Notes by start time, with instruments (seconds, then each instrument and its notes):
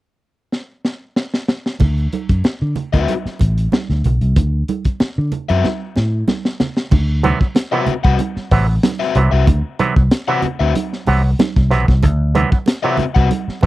0.52 snare
0.85 snare
1.16 snare
1.34 snare
1.48 snare
1.66 snare
1.80 fingered electric bass D2, kick, crash, muted conga, low conga
1.98 closed hi-hat
2.13 closed hi-hat, high conga
2.29 fingered electric bass F#2, kick, closed hi-hat
2.44 muted fingered electric bass stroke, snare, muted conga
2.62 fingered electric bass D3
2.76 closed hi-hat, muted conga, low conga
2.93 fingered electric bass D2, overdriven electric guitar C4 F#4 B4 E5, kick, closed hi-hat
3.08 closed hi-hat, high conga
3.26 muted fingered electric bass stroke, snare, closed hi-hat
3.39 fingered electric bass A1, kick, closed hi-hat, muted conga
3.58 closed hi-hat
3.72 snare, high conga
3.90 fingered electric bass D2, snare, closed hi-hat
4.04 fingered electric bass B1, closed hi-hat, muted conga, low conga
4.21 fingered electric bass C2, closed hi-hat
4.36 fingered electric bass D2, kick, closed hi-hat, low conga
4.68 closed hi-hat, muted conga, high conga
4.84 muted fingered electric bass stroke, kick, closed hi-hat
5.00 muted fingered electric bass stroke, snare, muted conga
5.18 fingered electric bass D3
5.32 closed hi-hat, muted conga, low conga
5.49 fingered electric bass F#2, overdriven electric guitar C4 F#4 B4 E5, closed hi-hat
5.64 snare, high conga
5.96 fingered electric bass A2, snare, muted conga
6.28 snare, high conga
6.45 snare
6.60 snare, muted conga, low conga
6.77 snare
6.91 fingered electric bass D2, kick, crash, low conga
7.23 clav C3 E3 F#3 B3, closed hi-hat, muted conga, high conga
7.41 clav F#3 B3, kick
7.55 snare, closed hi-hat, muted conga
7.72 clav C3 E3 F#3 B3, overdriven electric guitar C4 F#4 B4 E5
7.87 muted fingered electric bass stroke, closed hi-hat, muted conga, low conga
8.04 fingered electric bass C2, overdriven electric guitar C4 F#4 B4 F#5, kick
8.19 closed hi-hat, muted conga, high conga
8.36 muted fingered electric bass stroke, snare
8.51 fingered electric bass A1, clav C3 E3 F#3 B3, kick, open hi-hat
8.69 clav F#3 B3
8.83 clav F#3 B3, snare, closed hi-hat, muted conga, high conga
9.00 overdriven electric guitar C4 F#4 B4 E5, snare
9.15 fingered electric bass C2, clav C3 E3 F#3 B3, closed hi-hat, muted conga
9.31 fingered electric bass C2, overdriven electric guitar C4 F#4 B4 E5
9.47 fingered electric bass D2, kick, closed hi-hat, muted conga, low conga
9.79 clav C3 E3 F#3 B3, closed hi-hat, high conga
9.96 fingered electric bass C2, clav F#3 B3, kick
10.11 snare, closed hi-hat, muted conga
10.28 clav C3 E3 F#3 B3, overdriven electric guitar C4 F#4 B4 F#5
10.42 muted fingered electric bass stroke, closed hi-hat, muted conga, low conga
10.59 fingered electric bass D2, overdriven electric guitar C4 F#4 B4 E5
10.75 closed hi-hat, high conga
10.93 snare
11.07 fingered electric bass C2, clav C3 E3 F#3 B3, open hi-hat, muted conga
11.24 clav F#3 B3
11.39 snare, closed hi-hat, high conga
11.56 fingered electric bass C2, kick, snare
11.71 fingered electric bass B1, clav C3 E3 F#3 B3, snare, closed hi-hat
11.88 fingered electric bass C2, clav F#3 B3, kick, snare
12.03 fingered electric bass D2, kick, closed hi-hat, muted conga, low conga
12.35 clav C3 E3 F#3 B3, closed hi-hat, muted conga, high conga
12.52 clav F#3 B3, kick
12.66 snare, closed hi-hat, muted conga
12.83 clav C3 E3 F#3 B3, overdriven electric guitar C4 F#4 B4 E5
12.97 muted fingered electric bass stroke, closed hi-hat, low conga
13.15 fingered electric bass C2, overdriven electric guitar C4 F#4 B4 F#5, kick
13.31 closed hi-hat, muted conga, high conga
13.48 muted fingered electric bass stroke, snare
13.61 fingered electric bass A1, clav C3 E3 F#3 B3, kick, muted conga